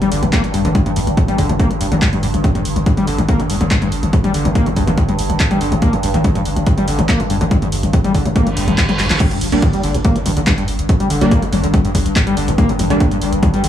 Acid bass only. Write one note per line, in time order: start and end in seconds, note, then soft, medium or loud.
0.02 0.10 G3 medium
0.12 0.24 D3 medium
0.23 0.26 G2 medium
0.33 0.42 A#3 medium
0.54 0.60 G2 medium
0.65 0.68 D3 medium
0.75 0.81 G2 medium
0.86 0.92 G2 medium
0.96 1.00 G2 loud
1.17 1.21 G2 medium
1.28 1.37 G3 medium
1.39 1.51 D3 medium
1.49 1.53 G2 medium
1.60 1.69 A#3 medium
1.81 1.87 G2 medium
1.92 1.95 D3 medium
2.02 2.08 G2 medium
2.13 2.18 G2 medium
2.23 2.27 G2 loud
2.44 2.50 G2 medium
2.55 2.61 G2 medium
2.86 2.90 G2 medium
2.97 3.06 G3 medium
3.08 3.20 D3 medium
3.19 3.22 G2 medium
3.29 3.41 A#3 medium
3.40 3.43 G2 loud
3.50 3.56 G2 medium
3.61 3.64 D3 medium
3.71 3.77 G2 medium
3.82 3.87 G2 medium
4.13 4.17 G2 medium
4.24 4.33 G3 medium
4.34 4.47 D3 medium
4.45 4.49 G2 medium
4.55 4.68 A#3 medium
4.66 4.70 G2 loud
4.77 4.83 G2 medium
4.88 4.91 D3 medium
4.98 5.04 G2 medium
5.09 5.14 G2 medium
5.40 5.44 G2 medium
5.51 5.59 G3 medium
5.61 5.74 D3 medium
5.72 5.75 G2 medium
5.82 5.95 A#3 medium
5.93 5.96 G2 loud
6.03 6.09 G2 medium
6.14 6.18 D3 medium
6.25 6.31 G2 medium
6.36 6.41 G2 medium
6.67 6.70 G2 medium
6.78 6.86 G3 medium
6.88 7.00 D3 medium
6.99 7.02 G2 medium
7.09 7.21 A#3 medium
7.20 7.23 G2 loud
7.30 7.36 G2 medium
7.41 7.44 D3 medium
7.51 7.57 G2 medium
7.62 7.68 G2 medium
7.93 7.97 G2 medium
8.04 8.13 G3 medium
8.15 8.27 D3 medium
8.26 8.29 G2 medium
8.36 8.48 A#3 medium
8.47 8.50 G2 loud
8.57 8.66 G2 medium
8.68 8.73 G2 medium
8.78 8.84 G2 medium
8.89 8.92 G3 medium
8.99 9.05 G2 medium
9.10 9.13 F3 medium
9.20 9.26 G2 medium
9.31 9.37 G2 medium
9.63 9.66 G2 medium
9.74 9.82 G3 medium
9.84 9.96 D3 medium
9.95 9.98 G2 medium
10.05 10.17 A#3 medium
10.16 10.19 G2 loud
10.26 10.32 G2 medium
10.37 10.40 D3 medium
10.47 10.53 G2 medium
10.58 10.63 G2 medium
10.89 10.93 G2 medium
11.00 11.09 G3 medium
11.10 11.23 D3 medium
11.21 11.25 G2 medium
11.31 11.44 A#3 medium
11.42 11.46 G2 loud
11.52 11.58 G2 medium
11.63 11.67 D3 medium
11.73 11.80 G2 medium
11.85 11.90 G2 medium
12.16 12.19 G2 medium
12.27 12.35 G3 medium
12.37 12.50 D3 medium
12.48 12.51 G2 medium
12.58 12.71 A#3 medium
12.69 12.73 G2 loud
12.79 12.85 G2 medium
12.90 12.94 D3 medium
13.00 13.06 G2 medium
13.11 13.17 G2 medium
13.43 13.46 G2 medium
13.54 13.62 G3 medium
13.64 13.69 D3 medium